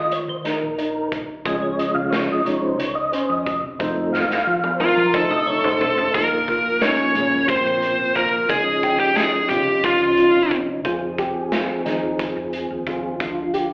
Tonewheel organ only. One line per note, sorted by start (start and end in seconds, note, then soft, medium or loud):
0.00 0.13 D#5 medium
0.12 0.20 C#5 medium
0.29 0.37 C5 medium
0.46 1.08 A#4 medium
1.45 2.42 F3 medium
1.45 2.42 G#3 soft
1.45 2.43 C#4 medium
1.45 1.63 D#5 medium
1.62 1.79 C#5 medium
1.79 1.96 D#5 medium
1.94 2.12 F5 loud
2.11 2.29 C#5 medium
2.27 2.46 D#5 loud
2.44 2.76 F3 soft
2.44 2.76 G#3 soft
2.44 2.76 C#4 medium
2.44 2.62 C#5 medium
2.61 2.79 C5 medium
2.78 2.96 C#5 medium
2.95 3.13 D#5 medium
3.12 3.30 C5 medium
3.29 3.61 D#5 medium
3.79 4.24 F3 medium
3.79 4.24 A3 soft
3.79 4.25 C4 medium
4.12 4.75 F5 loud
4.73 4.80 C5 medium
4.80 5.15 A#4 medium
5.14 5.29 C5 loud
5.31 5.46 D#5 medium
5.47 5.65 C#5 medium
5.65 6.12 C5 medium
6.14 8.45 A#2 medium
6.14 8.46 F3 medium
6.14 8.46 A#3 medium
8.49 10.81 F3 medium
8.49 10.81 C#4 medium
8.49 10.81 D#4 medium
10.84 13.16 F3 medium
10.84 13.16 C4 medium
10.84 13.17 G#4 medium
13.20 13.73 D3 medium
13.20 13.73 F3 medium
13.20 13.73 F4 medium